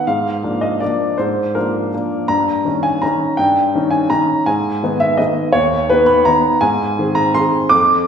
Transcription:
0.07 G#2 F5
0.44 F3 A#3 D4
0.61 D#5
0.80 F3 A#3 D4 D5
1.18 G#2 C5
1.55 F3 A#3 D4 A#4
1.94 F3 A#3 D4
2.28 G2 A#5
2.65 D#3 C#4 D#4
2.83 G#5
3.02 D#3 C#4 D#4 A#5
3.37 G2 G5
3.75 D#3 C#4 D#4
3.91 G#5
4.10 D#3 C#4 D#4 A#5
4.46 G#2 G#5
4.83 D#3 B3 D#4
5.00 E5
5.17 D#3 B3 D#4 D#5
5.52 D#2 C#5
5.90 D#3 B3 D#4 B4
6.06 B5
6.25 D#3 B3 D#4 A#5
6.61 G#2 G#5
6.99 D#3 C4 G#4
7.15 A#5
7.34 D#3 C4 G#4 C6
7.69 F2 D6

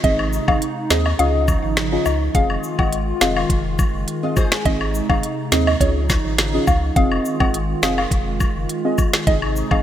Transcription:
0.04 G#1 C3 G#3 C4 D#4 G#4 D#5, kick, closed hi-hat
0.19 high woodblock
0.33 cabasa
0.48 G#1 C4 D#4 G#4 D#5 F5, kick, high woodblock
0.62 closed hi-hat
0.90 D#2 C4 D#4 G#4 D#5, finger snap, snare, cabasa
1.06 D#5, high woodblock
1.19 C#2 C#3 F3 C#4 D#4 F4 G#4 D#5 F5, closed hi-hat
1.48 kick, cabasa, high woodblock
1.64 G#1
1.77 finger snap, snare, closed hi-hat
1.92 C#4 F4 G#4 D#5
2.06 C#2 D#5, cabasa, high woodblock
2.34 F1 D#3 G#3 C4 F4 G#4 D#5 F5, kick, closed hi-hat
2.50 high woodblock
2.64 cabasa
2.79 G#1 C4 F4 G#4 D#5 F#5, kick, high woodblock
2.93 closed hi-hat
3.21 F1 C4 F4 G#4 D#5 F5, finger snap, snare, cabasa
3.36 F5, high woodblock
3.50 F1, kick, closed hi-hat
3.79 kick, cabasa, high woodblock
3.94 F#1
4.08 closed hi-hat
4.23 C4 F4 G#4 D#5
4.37 G#4 C5, kick, cabasa, high woodblock
4.52 F4 G#4, finger snap, snare
4.65 G#1 C3 C4 D#4 G#4 D#5, kick, closed hi-hat
4.81 high woodblock
4.95 cabasa
5.09 G#1 C4 D#4 G#4 D#5 F5, kick, high woodblock
5.23 closed hi-hat
5.52 D#2 C4 D#4 G#4 D#5, finger snap, snare, cabasa
5.67 D#5, high woodblock
5.80 C#2 C#3 F3 C#4 D#4 F4 G#4 C#5 D#5, kick, closed hi-hat
6.10 kick, snare, cabasa, high woodblock
6.25 G#1
6.38 finger snap, snare, closed hi-hat
6.53 C#4 F4 G#4 D#5
6.67 C#2 F5, kick, cabasa, high woodblock
6.96 F1 D#3 G#3 C4 F4 G#4 D#5 F5, kick, closed hi-hat
7.12 high woodblock
7.25 cabasa
7.40 G#1 C4 F4 G#4 D#5 F#5, kick, high woodblock
7.54 closed hi-hat
7.82 F1 C4 F4 G#4 D#5 F5, finger snap, snare, cabasa
7.98 F5, high woodblock
8.11 F1, kick, closed hi-hat
8.40 kick, cabasa, high woodblock
8.56 F#1
8.69 closed hi-hat
8.84 C4 F4 G#4 D#5
8.98 kick, cabasa, high woodblock
9.13 finger snap, snare
9.27 G#1 C3 C4 D#4 G#4 D#5, kick, closed hi-hat
9.42 high woodblock
9.56 cabasa
9.71 G#1 C4 D#4 G#4 D#5 F5, kick, high woodblock

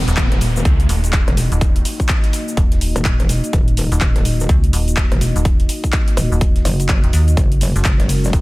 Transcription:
Already playing: A#3 D#4 F#4 D#5, downlifter
0.08 D#1, snare, closed hi-hat, shaker
0.17 D#1, kick, snare, clap, closed hi-hat, shaker
0.32 D#1, snare, closed hi-hat
0.41 closed hi-hat, open hi-hat, shaker
0.56 shaker
0.65 C#2, kick, closed hi-hat, shaker
0.80 closed hi-hat
0.89 D#1, closed hi-hat, open hi-hat, shaker
1.04 closed hi-hat, shaker
1.13 kick, snare, clap, closed hi-hat, shaker
1.28 E1, closed hi-hat
1.37 snare, closed hi-hat, open hi-hat, shaker
1.52 D#1, closed hi-hat, shaker
1.61 kick, closed hi-hat, shaker
1.76 closed hi-hat
1.85 closed hi-hat, open hi-hat, shaker
2.00 kick, closed hi-hat, shaker
2.09 kick, snare, clap, closed hi-hat, shaker
2.24 closed hi-hat
2.33 closed hi-hat, open hi-hat, shaker
2.48 shaker
2.57 D#1, kick, closed hi-hat, shaker
2.72 snare, closed hi-hat
2.81 closed hi-hat, open hi-hat, shaker
2.96 D#1, closed hi-hat, shaker
3.05 kick, snare, clap, closed hi-hat, shaker
3.20 E1, closed hi-hat
3.29 snare, closed hi-hat, open hi-hat, shaker
3.44 closed hi-hat, shaker
3.53 D#1, kick, closed hi-hat, shaker
3.68 closed hi-hat
3.77 closed hi-hat, open hi-hat, shaker
3.92 D#1, snare, closed hi-hat, shaker
4.01 D#1, kick, snare, clap, closed hi-hat, shaker
4.16 D#1, snare, closed hi-hat
4.25 closed hi-hat, open hi-hat, shaker
4.40 shaker
4.49 C#2, kick, closed hi-hat, shaker
4.64 closed hi-hat
4.73 D#1, closed hi-hat, open hi-hat, shaker
4.88 closed hi-hat, shaker
4.97 kick, snare, clap, closed hi-hat, shaker
5.12 E1, closed hi-hat
5.21 snare, closed hi-hat, open hi-hat, shaker
5.36 D#1, closed hi-hat, shaker
5.45 kick, closed hi-hat, shaker
5.60 closed hi-hat
5.69 closed hi-hat, open hi-hat, shaker
5.84 kick, closed hi-hat, shaker
5.93 kick, snare, clap, closed hi-hat, shaker
6.08 closed hi-hat
6.17 D#1, closed hi-hat, open hi-hat, shaker
6.32 D#1, shaker
6.41 kick, closed hi-hat, shaker
6.56 snare, closed hi-hat
6.65 F#1, closed hi-hat, open hi-hat, shaker
6.80 closed hi-hat, shaker
6.89 kick, snare, clap, closed hi-hat, shaker
7.04 E1, closed hi-hat
7.13 D#2, snare, closed hi-hat, open hi-hat, shaker
7.28 closed hi-hat, shaker
7.37 F#1 G#3 C#4 G#4 A#4, kick, closed hi-hat, shaker
7.52 closed hi-hat
7.61 closed hi-hat, open hi-hat, ride, shaker
7.76 F#1, snare, closed hi-hat, shaker
7.85 F#1 F#5, kick, snare, clap, closed hi-hat, shaker
8.00 F#1, snare, closed hi-hat
8.09 closed hi-hat, open hi-hat, ride, shaker
8.24 shaker
8.33 E1, kick, closed hi-hat, shaker

